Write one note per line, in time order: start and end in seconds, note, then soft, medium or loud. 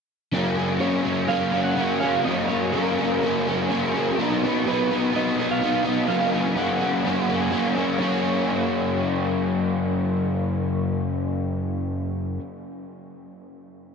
0.32 1.27 F#2 medium
0.32 0.78 C#3 medium
0.32 0.58 F#3 medium
0.32 0.57 A#3 loud
0.32 0.55 C#4 medium
0.56 0.80 F#3 medium
0.56 0.80 A#3 medium
0.56 0.81 C#4 medium
0.79 1.27 C#3 medium
0.79 1.06 F#3 medium
0.79 1.05 A#3 medium
0.79 1.03 C#4 medium
0.79 1.31 C#5 medium
1.03 1.29 F#3 medium
1.03 1.29 A#3 medium
1.03 1.29 C#4 medium
1.28 1.77 F#2 medium
1.28 1.74 C#3 medium
1.28 1.54 F#3 loud
1.28 1.53 A#3 loud
1.28 1.50 C#4 loud
1.28 1.63 F5 loud
1.51 1.76 F#3 medium
1.51 1.77 A#3 medium
1.51 1.77 C#4 medium
1.64 1.99 F#5 loud
1.75 2.24 C#3 medium
1.75 2.03 F#3 medium
1.75 2.02 A#3 medium
1.75 1.99 C#4 medium
2.00 2.25 F#3 medium
2.00 2.27 A#3 medium
2.00 2.26 C#4 medium
2.00 2.25 F5 medium
2.25 2.74 F#2 medium
2.25 2.71 C#3 medium
2.25 2.50 F#3 medium
2.25 2.49 A#3 medium
2.25 2.47 C#4 medium
2.25 2.50 D#5 loud
2.48 2.73 F#3 medium
2.48 2.74 A#3 medium
2.48 2.74 C#4 medium
2.48 2.72 C#5 medium
2.72 3.21 C#3 medium
2.72 3.00 F#3 medium
2.72 2.98 A#3 medium
2.72 2.97 C#4 medium
2.72 3.90 A#4 medium
2.98 3.23 F#3 medium
2.98 3.23 A#3 medium
2.98 3.23 C#4 medium
3.21 3.70 F#2 medium
3.21 3.68 C#3 medium
3.21 3.49 F#3 loud
3.21 3.47 A#3 loud
3.21 3.45 C#4 loud
3.47 3.70 F#3 medium
3.47 3.71 A#3 medium
3.47 3.71 C#4 medium
3.69 4.17 C#3 medium
3.69 3.97 F#3 medium
3.69 3.95 A#3 medium
3.69 3.93 C#4 medium
3.94 4.19 F#3 medium
3.94 4.20 A#3 medium
3.94 4.17 C#4 medium
4.18 4.64 B2 medium
4.18 4.45 F#3 loud
4.18 4.44 B3 medium
4.18 4.41 D#4 medium
4.43 4.67 F#3 medium
4.43 4.66 B3 medium
4.43 4.67 D#4 medium
4.65 5.11 B2 medium
4.65 4.93 F#3 medium
4.65 4.90 B3 medium
4.65 4.89 D#4 medium
4.65 5.17 B4 medium
4.90 5.13 F#3 medium
4.90 5.14 B3 medium
4.90 5.14 D#4 medium
5.13 5.61 B2 medium
5.13 5.40 F#3 medium
5.13 5.38 B3 loud
5.13 5.36 D#4 loud
5.13 5.51 D#5 medium
5.38 5.62 F#3 medium
5.38 5.62 B3 medium
5.38 5.63 D#4 medium
5.51 5.87 F5 medium
5.62 6.08 B2 medium
5.62 5.88 F#3 medium
5.62 5.85 B3 medium
5.62 5.84 D#4 medium
5.85 6.10 F#3 medium
5.85 6.09 B3 medium
5.85 6.08 D#4 medium
5.85 6.08 D#5 medium
6.08 6.57 F#2 medium
6.08 6.54 C#3 medium
6.08 6.35 F#3 medium
6.08 6.33 A#3 loud
6.08 6.31 C#4 loud
6.08 6.32 F5 medium
6.32 6.55 F#3 medium
6.32 6.56 A#3 medium
6.32 6.57 C#4 medium
6.32 6.57 G#5 loud
6.56 7.04 C#3 medium
6.56 6.81 F#3 medium
6.56 6.80 A#3 medium
6.56 6.78 C#4 medium
6.56 7.72 F#5 medium
6.79 7.04 F#3 medium
6.79 7.05 A#3 medium
6.79 7.06 C#4 medium
7.04 7.52 F#2 medium
7.04 7.49 C#3 medium
7.04 7.29 F#3 medium
7.04 7.28 A#3 loud
7.04 7.27 C#4 loud
7.28 7.50 F#3 medium
7.28 7.51 A#3 medium
7.28 7.52 C#4 medium
7.50 7.98 C#3 medium
7.50 7.76 F#3 medium
7.50 7.75 A#3 medium
7.50 7.73 C#4 medium
7.74 7.99 F#3 medium
7.74 7.99 A#3 medium
7.74 7.98 C#4 medium
7.98 12.37 F#2 medium
7.98 12.38 C#3 loud
7.98 12.39 F#3 medium
7.98 12.39 A#3 medium
7.98 12.40 C#4 medium
7.98 12.41 F#4 medium
7.98 12.33 C#5 medium